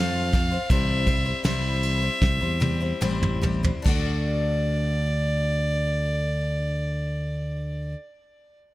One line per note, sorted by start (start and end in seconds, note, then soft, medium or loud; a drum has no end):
0.00 0.57 F2 medium
0.00 0.33 F3 medium
0.00 0.31 A3 medium
0.00 0.32 C4 medium
0.00 0.33 F4 loud
0.00 0.34 C5 medium
0.00 0.71 F5 medium
0.33 0.51 A3 medium
0.33 0.52 C4 medium
0.33 0.51 F4 medium
0.33 0.50 C5 medium
0.33 kick medium
0.33 snare soft
0.33 ride medium
0.52 0.69 C4 soft
0.52 0.70 F4 soft
0.52 0.70 C5 medium
0.70 1.31 C2 loud
0.70 1.07 C3 medium
0.70 1.07 E3 medium
0.70 1.05 G3 medium
0.70 1.06 C4 medium
0.70 1.07 E4 medium
0.70 1.07 C5 loud
0.70 1.44 E5 medium
0.70 kick loud
0.70 ride medium
1.06 1.25 G3 medium
1.06 1.25 C4 medium
1.06 1.25 E4 medium
1.06 1.24 C5 medium
1.06 kick medium
1.06 ride medium
1.25 1.44 G3 soft
1.25 1.44 C4 soft
1.25 1.44 E4 medium
1.25 1.44 C5 medium
1.44 2.08 C2 loud
1.44 2.02 C3 medium
1.44 2.02 E3 medium
1.44 2.02 G3 medium
1.44 2.02 C4 medium
1.44 2.01 E4 loud
1.44 2.00 C5 loud
1.44 3.39 E5 medium
1.44 snare loud
1.44 ride medium
1.83 ride medium
2.02 2.41 G3 soft
2.02 2.41 C4 soft
2.02 2.40 E4 medium
2.02 2.39 C5 soft
2.22 2.38 C2 loud
2.22 kick loud
2.22 snare medium
2.41 2.91 E2 medium
2.41 2.59 G3 soft
2.41 2.60 C4 medium
2.41 2.60 E4 soft
2.41 2.61 C5 medium
2.60 2.81 G3 medium
2.60 2.81 C4 medium
2.60 2.80 E4 medium
2.60 2.79 C5 medium
2.60 high tom medium
2.81 3.00 G3 soft
2.81 3.01 C4 soft
2.81 3.00 E4 medium
2.81 3.01 C5 medium
3.01 3.71 A1 medium
3.01 3.43 C3 loud
3.01 3.43 E3 medium
3.01 3.40 G3 loud
3.01 3.41 C4 medium
3.01 3.42 E4 loud
3.01 3.43 C5 loud
3.01 mid tom loud
3.23 mid tom medium
3.42 3.64 G3 medium
3.42 3.63 C4 medium
3.42 3.62 E4 medium
3.42 3.62 C5 medium
3.42 floor tom loud
3.63 3.84 G3 medium
3.63 3.86 C4 medium
3.63 3.85 E4 medium
3.63 3.85 C5 medium
3.63 floor tom loud
3.82 7.94 D2 loud
3.82 7.94 D3 medium
3.82 7.96 A3 medium
3.82 7.93 D5 medium
3.82 kick loud
3.82 crash medium
3.86 7.98 D4 medium
3.86 8.00 F#4 medium
3.86 8.01 D5 medium